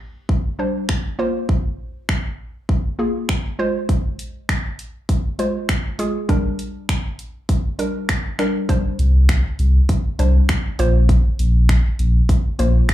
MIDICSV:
0, 0, Header, 1, 4, 480
1, 0, Start_track
1, 0, Tempo, 600000
1, 1193, Time_signature, 4, 2, 24, 8
1, 10351, End_track
2, 0, Start_track
2, 0, Title_t, "Synth pluck"
2, 0, Program_c, 0, 84
2, 470, Note_on_c, 0, 55, 75
2, 472, Note_on_c, 0, 62, 68
2, 475, Note_on_c, 0, 72, 82
2, 877, Note_off_c, 0, 55, 0
2, 878, Note_off_c, 0, 62, 0
2, 879, Note_off_c, 0, 72, 0
2, 949, Note_on_c, 0, 58, 93
2, 951, Note_on_c, 0, 65, 83
2, 954, Note_on_c, 0, 72, 99
2, 1756, Note_off_c, 0, 58, 0
2, 1757, Note_off_c, 0, 65, 0
2, 1759, Note_off_c, 0, 72, 0
2, 2390, Note_on_c, 0, 58, 75
2, 2392, Note_on_c, 0, 65, 71
2, 2394, Note_on_c, 0, 68, 87
2, 2796, Note_off_c, 0, 58, 0
2, 2797, Note_off_c, 0, 65, 0
2, 2798, Note_off_c, 0, 68, 0
2, 2871, Note_on_c, 0, 56, 89
2, 2872, Note_on_c, 0, 65, 84
2, 2874, Note_on_c, 0, 72, 104
2, 3677, Note_off_c, 0, 56, 0
2, 3678, Note_off_c, 0, 65, 0
2, 3679, Note_off_c, 0, 72, 0
2, 4311, Note_on_c, 0, 56, 78
2, 4313, Note_on_c, 0, 65, 73
2, 4315, Note_on_c, 0, 72, 86
2, 4717, Note_off_c, 0, 56, 0
2, 4718, Note_off_c, 0, 65, 0
2, 4719, Note_off_c, 0, 72, 0
2, 4791, Note_on_c, 0, 56, 86
2, 4793, Note_on_c, 0, 65, 79
2, 4795, Note_on_c, 0, 68, 95
2, 4994, Note_off_c, 0, 56, 0
2, 4996, Note_off_c, 0, 65, 0
2, 4997, Note_off_c, 0, 68, 0
2, 5030, Note_on_c, 0, 55, 85
2, 5032, Note_on_c, 0, 62, 79
2, 5034, Note_on_c, 0, 70, 94
2, 5837, Note_off_c, 0, 55, 0
2, 5838, Note_off_c, 0, 62, 0
2, 5839, Note_off_c, 0, 70, 0
2, 6230, Note_on_c, 0, 55, 75
2, 6232, Note_on_c, 0, 62, 70
2, 6234, Note_on_c, 0, 70, 83
2, 6637, Note_off_c, 0, 55, 0
2, 6638, Note_off_c, 0, 62, 0
2, 6639, Note_off_c, 0, 70, 0
2, 6710, Note_on_c, 0, 55, 84
2, 6713, Note_on_c, 0, 62, 77
2, 6714, Note_on_c, 0, 70, 96
2, 6914, Note_off_c, 0, 55, 0
2, 6915, Note_off_c, 0, 62, 0
2, 6916, Note_off_c, 0, 70, 0
2, 6951, Note_on_c, 0, 55, 86
2, 6953, Note_on_c, 0, 62, 77
2, 6955, Note_on_c, 0, 72, 94
2, 7757, Note_off_c, 0, 55, 0
2, 7758, Note_off_c, 0, 62, 0
2, 7759, Note_off_c, 0, 72, 0
2, 8151, Note_on_c, 0, 55, 77
2, 8153, Note_on_c, 0, 62, 70
2, 8155, Note_on_c, 0, 72, 88
2, 8557, Note_off_c, 0, 55, 0
2, 8558, Note_off_c, 0, 62, 0
2, 8559, Note_off_c, 0, 72, 0
2, 8632, Note_on_c, 0, 58, 88
2, 8634, Note_on_c, 0, 65, 82
2, 8636, Note_on_c, 0, 72, 105
2, 9438, Note_off_c, 0, 58, 0
2, 9439, Note_off_c, 0, 65, 0
2, 9440, Note_off_c, 0, 72, 0
2, 10071, Note_on_c, 0, 58, 78
2, 10073, Note_on_c, 0, 65, 74
2, 10075, Note_on_c, 0, 72, 87
2, 10351, Note_off_c, 0, 58, 0
2, 10351, Note_off_c, 0, 65, 0
2, 10351, Note_off_c, 0, 72, 0
2, 10351, End_track
3, 0, Start_track
3, 0, Title_t, "Sub bass"
3, 0, Program_c, 1, 38
3, 7193, Note_on_c, 1, 36, 86
3, 7542, Note_off_c, 1, 36, 0
3, 7673, Note_on_c, 1, 36, 94
3, 7848, Note_off_c, 1, 36, 0
3, 8153, Note_on_c, 1, 36, 91
3, 8328, Note_off_c, 1, 36, 0
3, 8634, Note_on_c, 1, 34, 90
3, 8983, Note_off_c, 1, 34, 0
3, 9114, Note_on_c, 1, 34, 83
3, 9463, Note_off_c, 1, 34, 0
3, 9594, Note_on_c, 1, 34, 96
3, 9768, Note_off_c, 1, 34, 0
3, 10074, Note_on_c, 1, 34, 89
3, 10248, Note_off_c, 1, 34, 0
3, 10351, End_track
4, 0, Start_track
4, 0, Title_t, "Drums"
4, 232, Note_on_c, 9, 36, 111
4, 312, Note_off_c, 9, 36, 0
4, 711, Note_on_c, 9, 26, 111
4, 713, Note_on_c, 9, 36, 109
4, 791, Note_off_c, 9, 26, 0
4, 793, Note_off_c, 9, 36, 0
4, 1192, Note_on_c, 9, 36, 116
4, 1272, Note_off_c, 9, 36, 0
4, 1671, Note_on_c, 9, 26, 104
4, 1672, Note_on_c, 9, 36, 102
4, 1751, Note_off_c, 9, 26, 0
4, 1752, Note_off_c, 9, 36, 0
4, 2152, Note_on_c, 9, 36, 106
4, 2232, Note_off_c, 9, 36, 0
4, 2631, Note_on_c, 9, 26, 117
4, 2634, Note_on_c, 9, 36, 118
4, 2711, Note_off_c, 9, 26, 0
4, 2714, Note_off_c, 9, 36, 0
4, 3112, Note_on_c, 9, 36, 117
4, 3113, Note_on_c, 9, 42, 64
4, 3192, Note_off_c, 9, 36, 0
4, 3193, Note_off_c, 9, 42, 0
4, 3353, Note_on_c, 9, 42, 47
4, 3433, Note_off_c, 9, 42, 0
4, 3592, Note_on_c, 9, 36, 97
4, 3593, Note_on_c, 9, 26, 103
4, 3593, Note_on_c, 9, 42, 62
4, 3672, Note_off_c, 9, 36, 0
4, 3673, Note_off_c, 9, 26, 0
4, 3673, Note_off_c, 9, 42, 0
4, 3832, Note_on_c, 9, 42, 41
4, 3912, Note_off_c, 9, 42, 0
4, 4072, Note_on_c, 9, 36, 108
4, 4072, Note_on_c, 9, 42, 65
4, 4152, Note_off_c, 9, 36, 0
4, 4152, Note_off_c, 9, 42, 0
4, 4313, Note_on_c, 9, 42, 54
4, 4393, Note_off_c, 9, 42, 0
4, 4551, Note_on_c, 9, 26, 113
4, 4554, Note_on_c, 9, 36, 116
4, 4554, Note_on_c, 9, 42, 83
4, 4631, Note_off_c, 9, 26, 0
4, 4634, Note_off_c, 9, 36, 0
4, 4634, Note_off_c, 9, 42, 0
4, 4792, Note_on_c, 9, 42, 54
4, 4872, Note_off_c, 9, 42, 0
4, 5032, Note_on_c, 9, 36, 115
4, 5033, Note_on_c, 9, 42, 62
4, 5112, Note_off_c, 9, 36, 0
4, 5113, Note_off_c, 9, 42, 0
4, 5272, Note_on_c, 9, 42, 48
4, 5352, Note_off_c, 9, 42, 0
4, 5512, Note_on_c, 9, 26, 105
4, 5512, Note_on_c, 9, 36, 100
4, 5513, Note_on_c, 9, 42, 62
4, 5592, Note_off_c, 9, 26, 0
4, 5592, Note_off_c, 9, 36, 0
4, 5593, Note_off_c, 9, 42, 0
4, 5752, Note_on_c, 9, 42, 44
4, 5832, Note_off_c, 9, 42, 0
4, 5992, Note_on_c, 9, 36, 108
4, 5992, Note_on_c, 9, 42, 68
4, 6072, Note_off_c, 9, 36, 0
4, 6072, Note_off_c, 9, 42, 0
4, 6233, Note_on_c, 9, 42, 54
4, 6313, Note_off_c, 9, 42, 0
4, 6471, Note_on_c, 9, 26, 112
4, 6474, Note_on_c, 9, 36, 109
4, 6474, Note_on_c, 9, 42, 83
4, 6551, Note_off_c, 9, 26, 0
4, 6554, Note_off_c, 9, 36, 0
4, 6554, Note_off_c, 9, 42, 0
4, 6712, Note_on_c, 9, 26, 67
4, 6712, Note_on_c, 9, 42, 54
4, 6792, Note_off_c, 9, 26, 0
4, 6792, Note_off_c, 9, 42, 0
4, 6953, Note_on_c, 9, 36, 112
4, 6953, Note_on_c, 9, 42, 62
4, 7033, Note_off_c, 9, 36, 0
4, 7033, Note_off_c, 9, 42, 0
4, 7193, Note_on_c, 9, 42, 48
4, 7273, Note_off_c, 9, 42, 0
4, 7432, Note_on_c, 9, 26, 105
4, 7432, Note_on_c, 9, 42, 62
4, 7433, Note_on_c, 9, 36, 97
4, 7512, Note_off_c, 9, 26, 0
4, 7512, Note_off_c, 9, 42, 0
4, 7513, Note_off_c, 9, 36, 0
4, 7672, Note_on_c, 9, 42, 43
4, 7752, Note_off_c, 9, 42, 0
4, 7913, Note_on_c, 9, 36, 112
4, 7913, Note_on_c, 9, 42, 68
4, 7993, Note_off_c, 9, 36, 0
4, 7993, Note_off_c, 9, 42, 0
4, 8154, Note_on_c, 9, 42, 51
4, 8234, Note_off_c, 9, 42, 0
4, 8392, Note_on_c, 9, 26, 116
4, 8394, Note_on_c, 9, 36, 115
4, 8394, Note_on_c, 9, 42, 84
4, 8472, Note_off_c, 9, 26, 0
4, 8474, Note_off_c, 9, 36, 0
4, 8474, Note_off_c, 9, 42, 0
4, 8633, Note_on_c, 9, 42, 53
4, 8713, Note_off_c, 9, 42, 0
4, 8873, Note_on_c, 9, 36, 118
4, 8874, Note_on_c, 9, 42, 64
4, 8953, Note_off_c, 9, 36, 0
4, 8954, Note_off_c, 9, 42, 0
4, 9114, Note_on_c, 9, 42, 46
4, 9194, Note_off_c, 9, 42, 0
4, 9353, Note_on_c, 9, 36, 102
4, 9354, Note_on_c, 9, 26, 102
4, 9354, Note_on_c, 9, 42, 62
4, 9433, Note_off_c, 9, 36, 0
4, 9434, Note_off_c, 9, 26, 0
4, 9434, Note_off_c, 9, 42, 0
4, 9594, Note_on_c, 9, 42, 41
4, 9674, Note_off_c, 9, 42, 0
4, 9833, Note_on_c, 9, 36, 111
4, 9834, Note_on_c, 9, 42, 65
4, 9913, Note_off_c, 9, 36, 0
4, 9914, Note_off_c, 9, 42, 0
4, 10073, Note_on_c, 9, 42, 55
4, 10153, Note_off_c, 9, 42, 0
4, 10311, Note_on_c, 9, 26, 111
4, 10314, Note_on_c, 9, 36, 110
4, 10314, Note_on_c, 9, 42, 81
4, 10351, Note_off_c, 9, 26, 0
4, 10351, Note_off_c, 9, 36, 0
4, 10351, Note_off_c, 9, 42, 0
4, 10351, End_track
0, 0, End_of_file